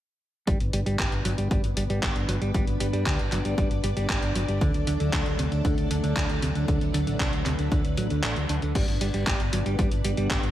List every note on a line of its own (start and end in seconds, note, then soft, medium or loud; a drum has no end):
0.47 0.57 G1 medium
0.47 0.57 G3 medium
0.47 4.57 B3 medium
0.47 8.71 D4 medium
0.47 4.57 B4 medium
0.47 8.71 D5 medium
0.47 kick loud
0.47 closed hi-hat medium
0.60 0.70 G1 medium
0.60 closed hi-hat soft
0.73 0.83 G1 medium
0.73 0.79 G3 medium
0.73 closed hi-hat medium
0.86 0.96 G1 medium
0.86 0.96 G3 medium
0.86 closed hi-hat soft
0.99 1.09 G1 loud
0.99 1.11 G4 medium
0.99 kick loud
0.99 clap loud
0.99 closed hi-hat medium
1.12 1.22 G1 medium
1.12 closed hi-hat soft
1.25 1.35 G1 medium
1.25 1.31 F#3 medium
1.25 closed hi-hat medium
1.38 1.47 G1 medium
1.38 1.50 G3 medium
1.38 closed hi-hat soft
1.51 1.60 G1 medium
1.51 1.61 G3 medium
1.51 kick loud
1.51 closed hi-hat medium
1.64 1.73 G1 medium
1.64 closed hi-hat soft
1.77 1.86 G1 medium
1.77 1.83 G3 medium
1.77 closed hi-hat medium
1.90 1.99 G1 medium
1.90 1.99 G3 loud
1.90 closed hi-hat soft
2.03 2.12 G1 medium
2.03 2.15 G4 medium
2.03 kick loud
2.03 clap loud
2.03 closed hi-hat medium
2.16 2.25 G1 medium
2.16 closed hi-hat soft
2.28 2.38 G1 medium
2.28 2.34 F#3 medium
2.28 closed hi-hat medium
2.41 2.51 G1 medium
2.41 2.53 G3 medium
2.41 closed hi-hat soft
2.54 2.64 G1 medium
2.54 2.64 G3 medium
2.54 kick loud
2.54 closed hi-hat medium
2.67 2.77 G1 medium
2.67 closed hi-hat soft
2.80 2.90 G1 medium
2.80 2.86 G3 medium
2.80 closed hi-hat medium
2.93 3.03 G2 medium
2.93 3.03 G3 medium
2.93 closed hi-hat soft
3.06 3.16 D2 loud
3.06 3.18 G4 medium
3.06 kick loud
3.06 clap loud
3.06 closed hi-hat medium
3.19 3.28 G1 medium
3.19 closed hi-hat soft
3.32 3.41 G1 medium
3.32 3.38 F#3 medium
3.32 clap soft
3.32 closed hi-hat medium
3.45 3.54 G1 medium
3.45 3.57 G3 medium
3.45 closed hi-hat soft
3.58 3.67 G1 loud
3.58 3.68 G3 medium
3.58 kick loud
3.58 closed hi-hat medium
3.71 3.80 G1 medium
3.71 closed hi-hat soft
3.84 3.93 G1 medium
3.84 3.90 G3 medium
3.84 closed hi-hat medium
3.97 4.06 G1 medium
3.97 4.06 G3 loud
3.97 closed hi-hat soft
4.10 4.19 G1 loud
4.10 4.22 G4 medium
4.10 kick loud
4.10 clap loud
4.10 closed hi-hat medium
4.22 4.32 G1 medium
4.22 closed hi-hat soft
4.35 4.45 G1 medium
4.35 4.41 F#3 medium
4.35 closed hi-hat medium
4.48 4.58 G1 medium
4.48 4.61 G3 medium
4.48 closed hi-hat soft
4.61 4.71 D2 medium
4.61 4.71 D3 medium
4.61 8.71 F#3 medium
4.61 8.71 A3 medium
4.61 6.66 A4 medium
4.61 kick loud
4.61 closed hi-hat medium
4.74 4.84 D2 medium
4.74 closed hi-hat soft
4.87 4.96 D2 medium
4.87 4.93 D3 medium
4.87 closed hi-hat medium
5.00 5.09 D2 medium
5.00 5.10 D3 medium
5.00 closed hi-hat soft
5.13 5.22 D2 loud
5.13 5.25 D4 medium
5.13 kick loud
5.13 clap loud
5.13 closed hi-hat medium
5.26 5.35 D2 medium
5.26 closed hi-hat soft
5.39 5.48 D2 medium
5.39 5.45 C3 medium
5.39 closed hi-hat medium
5.52 5.61 D2 medium
5.52 5.64 D3 medium
5.52 closed hi-hat soft
5.65 5.74 D3 medium
5.65 kick loud
5.65 closed hi-hat medium
5.77 5.87 D2 medium
5.77 closed hi-hat soft
5.91 6.00 D2 medium
5.91 5.96 D3 medium
5.91 closed hi-hat medium
6.03 6.13 D2 medium
6.03 6.13 D3 loud
6.03 closed hi-hat soft
6.16 6.26 D2 loud
6.16 6.29 D4 medium
6.16 kick loud
6.16 clap loud
6.16 closed hi-hat medium
6.29 6.39 D2 medium
6.29 closed hi-hat soft
6.42 6.52 D2 medium
6.42 6.48 C3 medium
6.42 closed hi-hat medium
6.55 6.65 D2 medium
6.55 6.67 D3 medium
6.55 closed hi-hat soft
6.68 6.78 D2 loud
6.68 6.78 D3 medium
6.68 8.73 B4 medium
6.68 kick loud
6.68 closed hi-hat medium
6.81 6.90 D2 medium
6.81 closed hi-hat soft
6.94 7.03 D2 medium
6.94 7.00 D3 medium
6.94 closed hi-hat medium
7.07 7.16 A1 medium
7.07 7.17 D3 loud
7.07 closed hi-hat soft
7.20 7.29 C2 loud
7.20 7.32 D4 medium
7.20 kick loud
7.20 clap loud
7.20 closed hi-hat medium
7.33 7.42 D2 medium
7.33 closed hi-hat soft
7.46 7.55 D2 medium
7.46 7.52 C3 medium
7.46 clap soft
7.46 closed hi-hat medium
7.58 7.68 D2 medium
7.58 7.70 D3 medium
7.58 closed hi-hat soft
7.72 7.81 D2 loud
7.72 7.81 D3 medium
7.72 kick loud
7.72 closed hi-hat medium
7.84 7.94 D2 medium
7.84 closed hi-hat soft
7.97 8.07 A1 medium
7.97 8.07 F#3 medium
7.97 closed hi-hat medium
8.10 8.20 D2 medium
8.10 8.20 D3 medium
8.10 closed hi-hat soft
8.23 8.33 A1 loud
8.23 8.36 A3 loud
8.23 clap loud
8.23 closed hi-hat medium
8.36 8.46 D2 medium
8.36 closed hi-hat soft
8.49 8.59 D2 medium
8.49 8.55 D4 medium
8.49 closed hi-hat medium
8.62 8.71 D2 medium
8.62 8.72 D3 medium
8.62 closed hi-hat soft
8.75 8.85 G1 medium
8.75 8.85 G3 medium
8.75 10.51 B3 medium
8.75 10.51 D4 medium
8.75 10.51 B4 medium
8.75 10.51 D5 medium
8.75 kick loud
8.75 closed hi-hat medium
8.75 crash medium
8.88 8.97 G1 medium
8.88 closed hi-hat soft
9.01 9.10 G1 medium
9.01 9.07 G3 medium
9.01 closed hi-hat medium
9.14 9.23 G1 medium
9.14 9.24 G3 loud
9.14 closed hi-hat soft
9.27 9.36 G1 loud
9.27 9.39 G4 medium
9.27 kick loud
9.27 clap loud
9.27 closed hi-hat medium
9.40 9.49 G1 medium
9.40 closed hi-hat soft
9.53 9.62 G1 medium
9.53 9.59 F#3 medium
9.53 closed hi-hat loud
9.66 9.75 G1 medium
9.66 9.78 G3 medium
9.66 closed hi-hat soft
9.79 9.88 G1 medium
9.79 9.88 G3 medium
9.79 kick loud
9.79 closed hi-hat medium
9.91 10.01 G1 medium
9.91 closed hi-hat soft
10.04 10.14 G1 medium
10.04 10.10 G3 medium
10.04 closed hi-hat medium
10.17 10.27 G1 medium
10.17 10.27 G3 loud
10.17 closed hi-hat soft
10.30 10.40 G1 loud
10.30 10.43 G4 medium
10.30 kick loud
10.30 clap loud
10.30 closed hi-hat medium
10.43 10.51 G1 medium
10.43 closed hi-hat soft